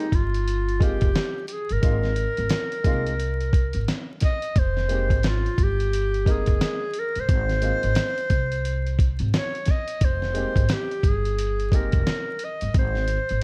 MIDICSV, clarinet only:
0, 0, Header, 1, 2, 480
1, 0, Start_track
1, 0, Key_signature, -4, "minor"
1, 0, Tempo, 681818
1, 1291, Time_signature, 4, 2, 24, 8
1, 9456, End_track
2, 0, Start_track
2, 0, Title_t, "Clarinet"
2, 0, Program_c, 0, 71
2, 0, Note_on_c, 0, 63, 92
2, 107, Note_on_c, 0, 65, 99
2, 117, Note_off_c, 0, 63, 0
2, 581, Note_on_c, 0, 67, 95
2, 592, Note_off_c, 0, 65, 0
2, 1033, Note_off_c, 0, 67, 0
2, 1038, Note_on_c, 0, 67, 64
2, 1070, Note_on_c, 0, 68, 92
2, 1081, Note_off_c, 0, 67, 0
2, 1213, Note_on_c, 0, 70, 100
2, 1223, Note_off_c, 0, 68, 0
2, 2800, Note_off_c, 0, 70, 0
2, 2988, Note_on_c, 0, 75, 104
2, 3229, Note_on_c, 0, 72, 96
2, 3239, Note_off_c, 0, 75, 0
2, 3715, Note_on_c, 0, 65, 105
2, 3726, Note_off_c, 0, 72, 0
2, 3963, Note_on_c, 0, 67, 102
2, 3973, Note_off_c, 0, 65, 0
2, 4440, Note_on_c, 0, 68, 95
2, 4450, Note_off_c, 0, 67, 0
2, 4920, Note_on_c, 0, 70, 96
2, 4931, Note_off_c, 0, 68, 0
2, 5068, Note_on_c, 0, 72, 109
2, 5078, Note_off_c, 0, 70, 0
2, 6407, Note_off_c, 0, 72, 0
2, 6591, Note_on_c, 0, 73, 101
2, 6833, Note_on_c, 0, 75, 94
2, 6844, Note_off_c, 0, 73, 0
2, 7072, Note_on_c, 0, 72, 98
2, 7083, Note_off_c, 0, 75, 0
2, 7553, Note_on_c, 0, 67, 95
2, 7563, Note_off_c, 0, 72, 0
2, 7796, Note_on_c, 0, 68, 92
2, 7807, Note_off_c, 0, 67, 0
2, 8275, Note_on_c, 0, 70, 89
2, 8285, Note_off_c, 0, 68, 0
2, 8759, Note_on_c, 0, 75, 98
2, 8770, Note_off_c, 0, 70, 0
2, 8985, Note_off_c, 0, 75, 0
2, 9000, Note_on_c, 0, 72, 102
2, 9456, Note_off_c, 0, 72, 0
2, 9456, End_track
0, 0, End_of_file